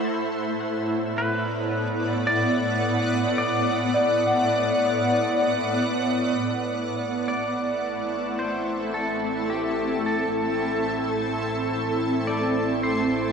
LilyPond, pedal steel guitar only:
\new Staff \with { instrumentName = "Pedal steel guitar" } { \time 3/4 \key a \dorian \tempo 4 = 54 r4 b'4 d''4 | d''2 r4 | r8 d''4 c''8 a'8 g'8 | a'2 d''8 c''8 | }